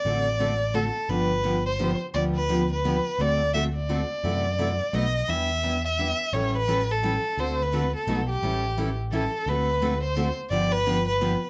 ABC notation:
X:1
M:3/4
L:1/16
Q:"Swing" 1/4=172
K:Dmix
V:1 name="Violin"
d8 A4 | B6 c4 z2 | d2 B4 B6 | d4 e2 d6- |
d8 ^d4 | e6 e6 | ^c2 B4 A6 | c2 B4 A4 G2- |
G6 z2 A4 | B6 c4 z2 | d2 B4 B6 |]
V:2 name="Steel-string acoustic guitar"
[D,A,CFA]2 z2 [D,A,CFA] z3 [D,A,CFA] z3 | [D,=F,B,DG]2 z2 [D,F,B,DG] z3 [D,F,B,DG] z3 | [D,=F,B,DG]2 z2 [D,F,B,DG] z3 [D,F,B,DG] z3 | [D,A,CFA]2 z2 [D,A,CFA] z3 [D,A,CFA] z3 |
[C,E,A,EF]2 z2 [C,E,A,EF] z3 [B,,F,A,^DF] z3 | [E,B,DG]2 z2 [E,B,DG] z3 [E,B,DG] z3 | [E,G,^CEA]2 z2 [E,G,CEA] z3 [E,G,CEA] z3 | [D,A,CFA]2 z2 [D,A,CFA] z3 [B,,F,A,^DF] z3 |
[E,G,^CEA]2 z2 [E,G,CEA] z3 [E,G,CEA] z3 | [D,A,CFA]2 z2 [D,A,CFA] z3 [D,A,CFA] z3 | [D,=F,B,DG]2 z2 [D,F,B,DG] z3 [D,F,B,DG] z3 |]
V:3 name="Steel-string acoustic guitar"
[D,A,CFA]2 z2 [D,A,CFA] z3 [D,A,CFA] z3 | [D,=F,B,DG]2 z2 [D,F,B,DG] z3 [D,F,B,DG] z3 | [D,=F,B,DG]2 z2 [D,F,B,DG] z3 [D,F,B,DG] z3 | [D,A,CFA]2 z2 [D,A,CFA] z3 [D,A,CFA] z3 |
[F,CEA]2 z2 [F,CEA] z3 [B,,F,A,^DFB] z3 | [E,G,DEB]2 z2 [E,G,DEB] z3 [E,G,DEB] z3 | [E,G,^CEA]2 z2 [E,G,CEA] z3 [E,G,CEA] z3 | [D,A,CFA]2 z2 [D,A,CFA] z3 [B,,F,A,^DFB] z3 |
[E,G,^CEA]2 z2 [E,G,CEA] z3 [E,G,CEA] z3 | [D,A,CFA]2 z2 [D,A,CFA] z3 [D,A,CFA] z3 | [D,=F,B,DG]2 z2 [D,F,B,DG] z3 [D,F,B,DG] z3 |]
V:4 name="Picked electric bass" clef=bass
A,,,12 | G,,,12 | D,,12 | D,,12 |
F,,8 B,,,4 | E,,12 | A,,,12 | D,,8 B,,,4 |
A,,,12 | D,,12 | G,,,12 |]